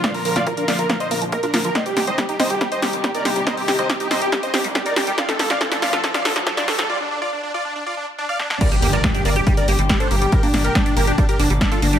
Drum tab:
CC |----------------|----------------|----------------|----------------|
HH |xooxxxoxxxoxxxox|xxoxxxoxxxoxxxox|xooxxxoxxxoxxxox|xxoxxxoxxxoxxxox|
SD |o--o--o-o-----o-|o-o-o-o-o-o-o-o-|o-o-o-o-o-o-o-o-|oooooooooooooooo|
BD |o---o---o---o---|o---o---o---o---|o---o---o---o---|o---o---o---o---|

CC |----------------|x---------------|----------------|
HH |----------------|xxoxxxoxxxoxxxox|xooxxxoxxxoxxxox|
SD |--------------oo|----o-------o---|--o-o-------o---|
BD |----------------|o---o---o---o---|o---o---o---o---|